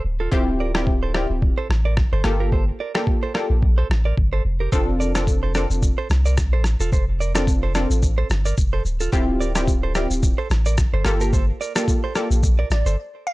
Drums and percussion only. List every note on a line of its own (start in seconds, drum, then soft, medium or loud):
0.32 kick loud
0.75 cross-stick loud
0.87 kick medium
1.14 cross-stick medium
1.42 kick loud
1.71 cross-stick loud
1.97 kick loud
1.97 cross-stick medium
2.24 cross-stick loud
2.52 kick loud
2.95 cross-stick loud
3.07 kick medium
3.35 cross-stick medium
3.62 kick loud
3.91 cross-stick loud
4.17 kick medium
4.72 kick loud
4.72 shaker medium
5.00 shaker soft
5.15 cross-stick loud
5.15 shaker medium
5.27 kick medium
5.27 shaker medium
5.54 cross-stick medium
5.54 shaker soft
5.70 shaker medium
5.82 kick loud
5.82 shaker medium
6.10 cross-stick medium
6.10 shaker soft
6.25 shaker medium
6.37 kick medium
6.37 cross-stick medium
6.37 shaker medium
6.64 cross-stick loud
6.64 shaker soft
6.80 shaker medium
6.92 kick loud
6.92 shaker medium
7.21 shaker soft
7.35 cross-stick loud
7.35 shaker medium
7.47 kick loud
7.47 shaker medium
7.75 cross-stick medium
7.75 shaker soft
7.91 shaker medium
8.02 kick loud
8.02 shaker medium
8.30 cross-stick loud
8.30 shaker soft
8.45 shaker medium
8.57 kick medium
8.57 shaker medium
8.85 shaker soft
9.00 shaker medium
9.13 kick loud
9.13 shaker medium
9.41 shaker soft
9.55 cross-stick loud
9.55 shaker medium
9.68 kick loud
9.68 shaker medium
9.95 cross-stick medium
9.95 shaker medium
10.11 shaker medium
10.23 kick loud
10.23 shaker medium
10.50 cross-stick loud
10.50 shaker soft
10.66 shaker medium
10.77 kick loud
10.77 cross-stick medium
10.77 shaker medium
11.05 cross-stick loud
11.05 shaker medium
11.20 shaker medium
11.33 kick loud
11.33 shaker medium
11.61 shaker soft
11.76 cross-stick loud
11.76 shaker medium
11.88 kick medium
11.88 shaker medium
12.15 cross-stick medium
12.15 shaker soft
12.31 shaker medium
12.43 kick loud
12.43 shaker medium
12.70 cross-stick loud
12.70 shaker soft
12.86 shaker medium